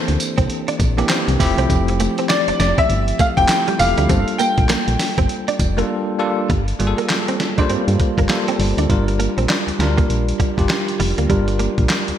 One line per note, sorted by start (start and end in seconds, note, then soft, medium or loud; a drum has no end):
0.00 0.97 E3 medium
0.00 0.98 A#3 medium
0.00 0.98 C4 medium
0.00 0.98 D4 medium
0.00 1.40 E4 medium
0.00 0.99 G4 medium
0.00 0.11 A4 loud
0.00 0.45 C5 medium
0.08 0.18 D2 medium
0.08 muted clean electric guitar stroke soft
0.08 closed hi-hat medium
0.20 closed hi-hat medium
0.20 tambourine medium
0.38 0.47 C2 medium
0.38 0.45 C4 medium
0.38 kick loud
0.38 closed hi-hat medium
0.50 closed hi-hat medium
0.68 0.75 D4 medium
0.68 closed hi-hat medium
0.80 1.04 A#1 medium
0.80 muted clean electric guitar stroke soft
0.80 kick medium
0.80 closed hi-hat medium
0.80 tambourine medium
0.97 1.27 E3 medium
0.97 1.27 A#3 medium
0.97 1.05 A#3 medium
0.97 1.27 C4 medium
0.97 1.27 D4 medium
0.97 1.27 G4 loud
0.97 closed hi-hat soft
1.09 1.21 C4 medium
1.09 snare loud
1.09 clap loud
1.09 closed hi-hat medium
1.09 tambourine medium
1.28 1.37 C2 loud
1.28 muted clean electric guitar stroke soft
1.28 closed hi-hat medium
1.39 1.55 F1 loud
1.39 2.37 F3 loud
1.39 2.37 A3 loud
1.39 2.37 C4 loud
1.39 2.37 E4 loud
1.39 2.37 G4 loud
1.39 kick loud
1.39 open hi-hat medium
1.39 tambourine medium
1.58 1.67 C2 medium
1.58 1.65 C4 medium
1.58 closed hi-hat medium
1.70 2.08 F1 loud
1.70 kick loud
1.70 closed hi-hat medium
1.70 tambourine medium
1.88 muted clean electric guitar stroke soft
1.88 closed hi-hat medium
2.00 2.11 A3 medium
2.00 closed hi-hat medium
2.00 tambourine medium
2.18 2.26 C4 medium
2.18 closed hi-hat soft
2.29 2.58 D5 loud
2.29 snare loud
2.29 clap medium
2.29 closed hi-hat medium
2.29 tambourine loud
2.48 2.53 F1 medium
2.48 2.55 D4 medium
2.48 closed hi-hat medium
2.60 2.74 F1 medium
2.60 2.77 D5 medium
2.60 muted clean electric guitar stroke soft
2.60 snare medium
2.60 closed hi-hat medium
2.60 tambourine medium
2.78 2.85 C4 medium
2.78 3.17 E5 loud
2.78 kick medium
2.78 closed hi-hat medium
2.89 3.13 G1 loud
2.89 closed hi-hat medium
3.08 closed hi-hat medium
3.19 3.31 A3 medium
3.19 3.25 F5 loud
3.19 kick loud
3.19 closed hi-hat medium
3.19 tambourine medium
3.37 3.47 F1 medium
3.37 3.66 F3 medium
3.37 3.67 A3 medium
3.37 3.67 C4 medium
3.37 3.67 E4 medium
3.37 3.67 G4 medium
3.37 3.80 G5 loud
3.37 kick medium
3.37 closed hi-hat medium
3.49 snare loud
3.49 clap loud
3.49 closed hi-hat medium
3.49 tambourine medium
3.68 3.75 G3 medium
3.68 closed hi-hat medium
3.78 3.94 E1 loud
3.78 4.01 F3 medium
3.78 4.01 A3 medium
3.78 4.01 C4 medium
3.78 4.01 E4 medium
3.78 4.02 G4 medium
3.78 4.36 F5 loud
3.78 muted clean electric guitar stroke soft
3.78 open hi-hat medium
3.78 tambourine medium
3.98 4.07 D2 loud
3.98 4.05 G3 medium
3.98 closed hi-hat medium
4.09 4.24 G1 loud
4.09 4.90 G3 medium
4.09 4.90 A#3 medium
4.09 4.21 C4 medium
4.09 4.90 D4 medium
4.09 4.90 F4 medium
4.09 4.90 A4 loud
4.09 kick loud
4.09 closed hi-hat medium
4.09 tambourine medium
4.28 closed hi-hat medium
4.38 4.51 A#3 medium
4.38 6.15 G5 loud
4.38 closed hi-hat medium
4.38 tambourine medium
4.58 4.67 A#1 medium
4.58 muted clean electric guitar stroke soft
4.58 kick loud
4.58 closed hi-hat soft
4.69 4.81 A#3 medium
4.69 snare loud
4.69 clap medium
4.69 closed hi-hat medium
4.69 tambourine loud
4.88 4.97 A#1 medium
4.88 muted clean electric guitar stroke soft
4.88 closed hi-hat medium
4.99 snare medium
4.99 open hi-hat medium
4.99 tambourine medium
5.18 5.27 G1 loud
5.18 5.25 C4 medium
5.18 kick medium
5.18 closed hi-hat medium
5.29 closed hi-hat medium
5.48 5.55 D4 medium
5.48 closed hi-hat medium
5.59 5.83 F1 medium
5.59 muted clean electric guitar stroke soft
5.59 kick medium
5.59 closed hi-hat medium
5.59 tambourine medium
5.77 6.06 G3 medium
5.77 6.07 A#3 medium
5.77 5.85 A#3 medium
5.77 6.07 D4 medium
5.77 6.07 F4 medium
5.77 6.07 A4 medium
5.77 closed hi-hat soft
6.18 6.41 G3 medium
6.18 6.41 A#3 loud
6.18 6.41 D4 loud
6.18 6.41 F4 medium
6.18 6.41 A4 loud
6.50 6.74 G1 loud
6.50 6.61 G3 medium
6.50 kick loud
6.50 closed hi-hat medium
6.68 closed hi-hat medium
6.79 6.94 G1 medium
6.79 7.30 G3 loud
6.79 7.31 A#3 medium
6.79 7.31 F4 medium
6.79 6.88 G#4 medium
6.79 muted clean electric guitar stroke soft
6.79 closed hi-hat medium
6.87 7.35 A4 loud
6.98 7.05 A#3 medium
6.98 closed hi-hat soft
7.10 snare loud
7.10 clap medium
7.10 closed hi-hat medium
7.28 7.36 C4 medium
7.28 closed hi-hat medium
7.40 muted clean electric guitar stroke soft
7.40 snare medium
7.40 closed hi-hat medium
7.58 8.04 G3 loud
7.58 8.04 A#3 loud
7.58 7.66 D4 medium
7.58 8.04 F4 loud
7.58 8.05 C5 loud
7.58 kick medium
7.58 closed hi-hat soft
7.69 7.77 G2 soft
7.69 7.81 C4 medium
7.69 closed hi-hat medium
7.88 7.97 G2 loud
7.88 closed hi-hat medium
8.00 muted clean electric guitar stroke soft
8.00 kick medium
8.00 closed hi-hat medium
8.18 8.27 G1 medium
8.18 8.25 A#3 medium
8.18 kick medium
8.18 closed hi-hat soft
8.29 8.88 G3 medium
8.29 8.88 A#3 medium
8.29 8.89 F4 medium
8.29 8.89 A4 medium
8.29 snare loud
8.29 clap medium
8.29 closed hi-hat medium
8.48 8.55 C4 medium
8.48 closed hi-hat medium
8.59 8.74 G1 medium
8.59 muted clean electric guitar stroke soft
8.59 open hi-hat medium
8.77 8.87 D2 medium
8.77 8.85 D4 medium
8.77 closed hi-hat medium
8.89 9.28 G1 loud
8.89 9.48 G3 medium
8.89 9.48 D4 medium
8.89 9.49 F4 medium
8.89 9.49 A#4 loud
8.89 kick loud
8.89 closed hi-hat medium
9.08 muted clean electric guitar stroke soft
9.08 closed hi-hat soft
9.19 9.31 A#3 medium
9.19 closed hi-hat medium
9.38 9.47 A#1 medium
9.38 9.45 C4 medium
9.38 closed hi-hat soft
9.49 9.61 D4 medium
9.49 snare loud
9.49 clap medium
9.49 closed hi-hat medium
9.67 9.72 D2 soft
9.67 muted clean electric guitar stroke soft
9.67 closed hi-hat medium
9.79 10.03 D2 medium
9.79 10.31 G3 medium
9.79 10.31 D4 medium
9.79 10.31 F4 medium
9.79 10.31 A#4 loud
9.79 snare medium
9.79 closed hi-hat medium
9.98 10.05 A#3 medium
9.98 kick medium
9.98 closed hi-hat medium
10.09 10.33 A#1 medium
10.09 closed hi-hat medium
10.29 closed hi-hat medium
10.40 10.51 G3 medium
10.40 kick medium
10.40 closed hi-hat medium
10.58 10.67 G1 medium
10.58 11.04 G3 medium
10.58 11.04 D4 medium
10.58 11.04 F4 medium
10.58 11.04 G4 medium
10.58 kick medium
10.58 closed hi-hat soft
10.69 muted clean electric guitar stroke soft
10.69 snare loud
10.69 clap medium
10.69 closed hi-hat medium
10.88 closed hi-hat medium
11.00 11.14 F1 loud
11.00 11.11 G3 medium
11.00 open hi-hat medium
11.18 11.27 D2 medium
11.18 11.25 A#3 medium
11.18 closed hi-hat medium
11.29 11.68 G1 loud
11.29 11.88 G3 medium
11.29 11.41 G3 medium
11.29 11.88 D4 medium
11.29 11.89 F4 medium
11.29 11.89 A#4 medium
11.29 kick loud
11.29 closed hi-hat medium
11.48 muted clean electric guitar stroke soft
11.48 closed hi-hat soft
11.59 11.71 A#3 medium
11.59 closed hi-hat medium
11.78 11.87 A#1 medium
11.78 kick medium
11.78 closed hi-hat soft
11.89 snare loud
11.89 clap medium
11.89 closed hi-hat medium
12.08 12.13 D2 soft
12.08 closed hi-hat medium